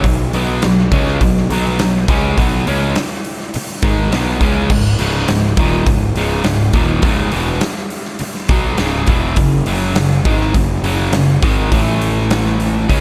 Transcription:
0.04 picked electric bass B1, distorted electric guitar B2 F#3, kick, open hi-hat
0.33 picked electric bass B1, distorted electric guitar B2 F#3 B3, open hi-hat
0.62 picked electric bass B1, distorted electric guitar B2 F#3, snare, open hi-hat
0.78 snare
0.92 picked electric bass C#2, distorted electric guitar C#3 G#3 C#4, kick, open hi-hat
1.07 snare
1.21 picked electric bass B1, distorted electric guitar B2 F#3, kick, open hi-hat
1.37 snare
1.50 picked electric bass B1, distorted electric guitar B2 F#3 B3, open hi-hat
1.79 picked electric bass B1, distorted electric guitar B2 F#3, snare, open hi-hat
2.08 picked electric bass C#2, distorted electric guitar C#3 G#3 C#4, kick, open hi-hat
2.38 picked electric bass B1, distorted electric guitar B2 F#3 B3, kick, open hi-hat
2.67 picked electric bass C#2, distorted electric guitar C#3 G#3 C#4, open hi-hat
2.96 snare, open hi-hat
3.25 open hi-hat
3.40 snare
3.54 muted picked electric bass stroke, muted distorted electric guitar stroke, open hi-hat
3.82 picked electric bass G#1, distorted electric guitar G#2 D#3 G#3, kick, open hi-hat
4.12 picked electric bass B1, distorted electric guitar B2 F#3 B3, snare, open hi-hat
4.41 picked electric bass C#2, distorted electric guitar C#3 G#3 C#4, kick, open hi-hat
4.70 picked electric bass C#1, distorted electric guitar C#2 G#2, kick, crash
4.99 picked electric bass C#1, distorted electric guitar C#2 G#2 C#3, open hi-hat
5.28 picked electric bass C#1, distorted electric guitar C#2 G#2, snare, open hi-hat
5.57 picked electric bass D#1, distorted electric guitar D#2 A#2 D#3, kick, open hi-hat
5.87 picked electric bass C#1, distorted electric guitar C#2 G#2, kick, open hi-hat
6.15 picked electric bass C#1, distorted electric guitar C#2 G#2 C#3, open hi-hat
6.44 picked electric bass C#1, distorted electric guitar C#2 G#2, snare, open hi-hat
6.73 picked electric bass D#1, distorted electric guitar D#2 A#2 D#3, kick, open hi-hat
7.02 picked electric bass C#1, distorted electric guitar C#2 G#2 C#3, kick, open hi-hat
7.32 picked electric bass E1, distorted electric guitar E2 B2 E3, open hi-hat
7.61 snare, open hi-hat
7.76 snare
7.90 open hi-hat
8.05 snare
8.19 muted distorted electric guitar stroke, muted picked electric bass stroke, open hi-hat
8.35 snare
8.49 picked electric bass B1, distorted electric guitar B2 F#3 B3, kick, open hi-hat
8.78 picked electric bass C#1, distorted electric guitar C#2 G#2 C#3, snare, open hi-hat
9.07 picked electric bass E1, distorted electric guitar E2 B2 E3, kick, open hi-hat
9.36 picked electric bass F#1, distorted electric guitar F#2 C#3, kick, open hi-hat
9.66 picked electric bass F#1, distorted electric guitar F#2 C#3 F#3, open hi-hat
9.96 picked electric bass F#1, distorted electric guitar F#2 C#3, snare, open hi-hat
10.12 snare
10.25 picked electric bass G#1, distorted electric guitar G#2 D#3 G#3, kick, open hi-hat
10.41 snare
10.54 picked electric bass F#1, distorted electric guitar F#2 C#3, kick, open hi-hat
10.83 picked electric bass F#1, distorted electric guitar F#2 C#3 F#3, open hi-hat
11.13 picked electric bass F#1, distorted electric guitar F#2 C#3, snare, open hi-hat
11.43 picked electric bass G#1, distorted electric guitar G#2 D#3 G#3, kick, open hi-hat
11.72 picked electric bass A1, distorted electric guitar A2 E3 A3, kick, open hi-hat
12.01 open hi-hat
12.31 snare, open hi-hat
12.46 snare
12.60 open hi-hat
12.88 picked electric bass C#2, distorted electric guitar C#3 G#3 C#4, kick, open hi-hat

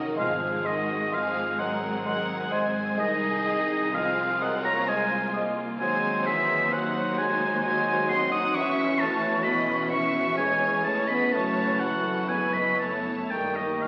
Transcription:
Already playing: double bass section F1, cello section F2, french horn section D#3, viola section C#4 A#4, violin section F#4 D#5
0.16 double bass section G#1, timpani G#2, cello section G#2, french horn section F3, bassoon G#3, viola section C4 G#4, violin section G#4 F5, flute C6
0.20 oboe F5
0.64 french horn section D#3, bassoon G#3, violin section F#4 D#5, oboe D#5, flute C6
1.11 french horn section F3, bassoon G#3, viola section C4 G#4, violin section G#4 F5, oboe F5, flute C6
1.57 french horn section F#3, bassoon G#3, violin section A#4 F#5, oboe F#5, flute C6
2.05 french horn section F#3, bassoon G#3, violin section A#4 F#5, oboe F#5, flute C6
2.51 bassoon G#3, french horn section G#3, violin section C5 G#5, oboe G#5, flute C6
2.97 cello section C2, double bass section C2, french horn section D#3, bassoon G#3, viola section D#4 G#4, violin section G#4 D#5, oboe D#5, flute D#6
3.45 bassoon G#3, viola section D#4, flute D#6
3.93 french horn section F3, bassoon G#3, viola section C4 F4, violin section G#4 F5, oboe F5, flute D#6
4.41 french horn section F#3, bassoon G#3, violin section A#4 F#5, oboe F#5, flute D#6
4.64 french horn section A#3, violin section C#5 A#5, oboe A#5
4.87 french horn section G#3, viola section G#3, bassoon G#3, violin section C5 G#5, oboe G#5, flute D#6
5.34 bassoon G#3, viola section A#3, flute D#6
5.80 double bass section D#2, cello section D#2, bassoon F#3, french horn section G#3, viola section C4 D#4, violin section C5 G#5, oboe G#5, flute C6
6.25 french horn section E3, violin section G#4 E5, oboe E5
6.70 bassoon F#3, french horn section F#3, viola section D#4 F#4, violin section C5 F#5, oboe F#5, flute C6
7.17 french horn section G#3, violin section C5 G#5, oboe G#5
7.63 bassoon F#3, french horn section G#3, viola section F#4, violin section C5 G#5, oboe G#5, flute C6
8.09 french horn section C4, violin section D#5 C6, oboe C6
8.32 french horn section D#4, violin section F#5 D#6, oboe D#6
8.55 double bass section E1, cello section E2, bassoon E3, viola section C#4, french horn section C#4, violin section E5 C#6, oboe C#6, flute C#6
8.99 french horn section A3, violin section C#5 A5, oboe A5
9.43 french horn section B3, viola section C#4, violin section D#5 B5, oboe B5
9.90 french horn section C#4, violin section E5 C#6, oboe C#6
10.36 bassoon E3, french horn section G#3, viola section G#4, violin section C#5 G#5, oboe G#5, flute C#6
10.83 french horn section A3, violin section C#5 A5, oboe A5
11.08 french horn section B3, violin section D#5 B5, oboe B5
11.31 double bass section F#1, cello section F#2, bassoon E3, french horn section A3, viola section F#4, violin section C#5 A5, oboe A5, flute C#6
11.80 french horn section F#3, violin section A4 F#5, oboe F#5
12.29 french horn section G#3, viola section B3 E4, violin section B4 G#5, oboe G#5
12.53 french horn section B3, violin section D#5 B5, oboe B5
12.79 violin section C#5 A5, oboe A5
12.84 french horn section A3
13.31 double bass section G1, cello section G2, bassoon D#3, french horn section G3, viola section A#3 D#4, violin section A#4 G5, oboe G5, flute C#6
13.55 french horn section D#3, violin section G4 D#5, oboe D#5
13.82 french horn section F3, violin section G#4 F5, oboe F5

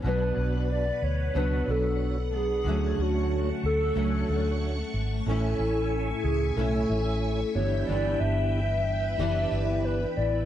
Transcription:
0.02 fingered electric bass B1, steel-string acoustic guitar B2 F#3, tonewheel organ B3 D4, string machine B4 F#5
0.06 steel-string acoustic guitar B3 D4, tonewheel organ F#4 D5, soft synth lead B4
0.37 fingered electric bass B1
0.72 soft synth lead D5
1.02 fingered electric bass D2, soft synth lead C#5
1.34 fingered electric bass C#2, steel-string acoustic guitar B2 F#3 B3 D4, tonewheel organ B3 D4 F#4 C#5, soft synth lead B4
1.68 fingered electric bass B1, steel-string acoustic guitar F#3 B3 D4, soft synth lead A4
2.31 steel-string acoustic guitar F#3 B3 D4
2.36 soft synth lead G#4
2.64 fingered electric bass D2, steel-string acoustic guitar D3 F#3 A3, tonewheel organ A3 D4 F#4, string machine A3 C#6
2.69 steel-string acoustic guitar C#4, tonewheel organ C#5
2.98 fingered electric bass D2, soft synth lead F#4
3.63 fingered electric bass D2, soft synth lead A4
3.95 fingered electric bass C#2, steel-string acoustic guitar F#3 A3 C#4, tonewheel organ A3 D4 F#4 C#5
4.29 fingered electric bass D2, steel-string acoustic guitar F#3 A3 C#4
4.94 fingered electric bass G#1
5.26 fingered electric bass A1, steel-string acoustic guitar A2 C#4, tonewheel organ A3 E4 C#5 G#5, soft synth lead A4, string machine E5 G#5
5.31 steel-string acoustic guitar E4
5.59 fingered electric bass A1
6.24 fingered electric bass C#2, soft synth lead G#4
6.56 fingered electric bass B1, steel-string acoustic guitar A2 C#4 E4, tonewheel organ A3 E4 C#5 G#5, soft synth lead A4
6.89 fingered electric bass A1, steel-string acoustic guitar C#4 E4
7.55 fingered electric bass G1, steel-string acoustic guitar E3 B3 D4, tonewheel organ B3 D4 E4 G4, string machine B4 G5, soft synth lead C#5
7.87 fingered electric bass G1, steel-string acoustic guitar G2 E3 B3, soft synth lead D5
7.92 steel-string acoustic guitar D4
8.20 fingered electric bass G1, soft synth lead E5
9.18 fingered electric bass F#1, steel-string acoustic guitar E3, tonewheel organ A#3 E4 G4 D5
9.22 steel-string acoustic guitar B3 D4, tonewheel organ B3
9.52 fingered electric bass G1
9.85 soft synth lead B4
10.17 fingered electric bass A1, soft synth lead D5

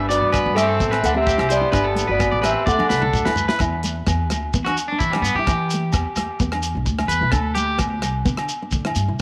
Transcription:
Already playing: upright bass G1
0.09 clean electric guitar F#4 D5, closed hi-hat, shekere
0.14 trumpet B3
0.22 upright bass G2
0.32 clean electric guitar B4, muted nylon-string guitar stroke, kick, cross-stick, low agogo, shekere
0.46 upright bass G2
0.55 nylon-string guitar A3, clean electric guitar G4 A4 E5, cross-stick, closed hi-hat, low agogo, shekere
0.61 trumpet C4
0.69 clean electric guitar A4
0.79 upright bass A1, nylon-string guitar B3, kick, shekere
0.91 nylon-string guitar C4, clean electric guitar B4, cross-stick, low agogo
1.03 upright bass D2, clean electric guitar A4 F#5, closed hi-hat, shekere
1.07 trumpet D4
1.14 nylon-string guitar C4, clean electric guitar G4 E5
1.21 trumpet C4
1.26 clean electric guitar G4, kick, shekere
1.38 upright bass C2, nylon-string guitar E4, cross-stick, low agogo
1.49 clean electric guitar G4 C5 D5, closed hi-hat, shekere
1.55 trumpet B3
1.61 nylon-string guitar E4
1.72 upright bass G1, nylon-string guitar D4, clean electric guitar B4, kick, cross-stick, low agogo, shekere
1.84 clean electric guitar A4
1.95 nylon-string guitar A3, closed hi-hat, shekere
2.07 upright bass G1, clean electric guitar F#4 B4
2.11 trumpet B3, clean electric guitar D5
2.19 nylon-string guitar B3, kick, cross-stick, low agogo, shekere
2.31 upright bass A1, clean electric guitar D5
2.42 nylon-string guitar A3, clean electric guitar G4 B4 E5, cross-stick, closed hi-hat, low agogo, shekere
2.47 trumpet C4
2.66 upright bass D2, nylon-string guitar B3, clean electric guitar A4 D5 F#5, kick, shekere
2.70 trumpet D4
2.78 nylon-string guitar D4, high tom, low agogo
2.89 upright bass C2, clean electric guitar B4, snare, shekere
3.02 nylon-string guitar D4, clean electric guitar A4, mid tom
3.13 upright bass D2, kick, mid tom, shekere
3.25 upright bass D2, nylon-string guitar E4, clean electric guitar B4, snare, low agogo
3.36 floor tom, shekere
3.48 nylon-string guitar E4, clean electric guitar B4, snare
3.59 upright bass E2, nylon-string guitar E4, kick, cross-stick, low agogo, shekere
3.83 nylon-string guitar A3, closed hi-hat, shekere
4.07 upright bass E2, nylon-string guitar B3, kick, cross-stick, low agogo, shekere
4.30 upright bass D2, nylon-string guitar A3, cross-stick, closed hi-hat, low agogo, shekere
4.54 upright bass E3, nylon-string guitar B3, kick, shekere
4.65 nylon-string guitar D4, clean electric guitar F#4, cross-stick, low agogo
4.77 closed hi-hat, shekere
4.88 clean electric guitar D4
4.92 nylon-string guitar D4
4.99 upright bass E3, clean electric guitar E4, kick, shekere
5.11 clean electric guitar G3, cross-stick, low agogo
5.16 muted nylon-string guitar stroke
5.22 upright bass G2, clean electric guitar B3, closed hi-hat, shekere
5.35 upright bass G2, clean electric guitar G4
5.39 nylon-string guitar E4
5.47 upright bass E3, nylon-string guitar E4, kick, cross-stick, low agogo, shekere
5.70 nylon-string guitar A3, closed hi-hat, shekere
5.93 upright bass E2, muted nylon-string guitar stroke, kick, cross-stick, low agogo, shekere
6.16 upright bass E2, nylon-string guitar A3, cross-stick, closed hi-hat, low agogo, shekere
6.40 upright bass E2, nylon-string guitar B3, kick, shekere
6.52 nylon-string guitar D4, cross-stick, low agogo
6.63 closed hi-hat, shekere
6.75 upright bass B1, nylon-string guitar D4
6.85 upright bass D2, kick, shekere
6.98 muted nylon-string guitar stroke, cross-stick, low agogo
7.08 upright bass E2, clean electric guitar B4, closed hi-hat, shekere
7.21 upright bass B1, nylon-string guitar E4
7.31 upright bass D2, nylon-string guitar D4, clean electric guitar A4, kick, cross-stick, low agogo, shekere
7.55 nylon-string guitar A3, clean electric guitar G4, closed hi-hat, shekere
7.78 upright bass D2, nylon-string guitar B3, kick, cross-stick, low agogo, shekere
8.02 upright bass C2, nylon-string guitar A3, cross-stick, closed hi-hat, low agogo, shekere
8.25 upright bass D3, nylon-string guitar B3, kick, shekere
8.37 nylon-string guitar D4, cross-stick, low agogo
8.49 closed hi-hat, shekere
8.62 nylon-string guitar D4
8.71 upright bass D3, kick, shekere
8.85 nylon-string guitar E4, cross-stick, low agogo
8.95 upright bass G2, closed hi-hat, shekere
9.08 upright bass C2, nylon-string guitar E4

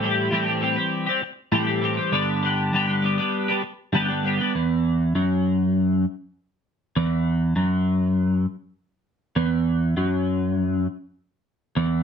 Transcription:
Already playing: clean electric guitar A2
0.02 clean electric guitar E3 G3 C4 G4
0.31 clean electric guitar A2 E3 G3 C4 G4
0.46 clean electric guitar G3 C4 G4
0.61 clean electric guitar E3 G3 C4 G4
0.76 clean electric guitar G3 C4 G4
1.06 clean electric guitar G3 C4 G4
1.22 muted clean electric guitar stroke
1.52 clean electric guitar A2 E3 G3 C4 G4
1.67 clean electric guitar G3 C4 G4
1.81 clean electric guitar E3 G3 C4 G4
1.97 clean electric guitar G3 C4 G4
2.12 clean electric guitar G2 D3 G3 B3 D4 G4
2.42 clean electric guitar G3 B3 D4 G4
2.72 clean electric guitar G2 D3 G3 B3 D4 G4
2.87 clean electric guitar G3 B3 D4 G4
3.02 clean electric guitar G3 B3 D4 G4
3.18 clean electric guitar G3 B3 D4 G4
3.48 clean electric guitar G3 B3 D4 G4
3.63 muted clean electric guitar stroke
3.93 clean electric guitar G2 D3 G3 B3 D4 G4
4.08 clean electric guitar G3 B3 D4 G4
4.24 clean electric guitar G3 B3 D4 G4
4.38 clean electric guitar G3 B3 D4 G4
4.55 clean electric guitar E2
5.15 clean electric guitar F#2
6.96 clean electric guitar E2
7.56 clean electric guitar F#2
9.36 clean electric guitar E2
9.97 clean electric guitar F#2
11.77 clean electric guitar E2

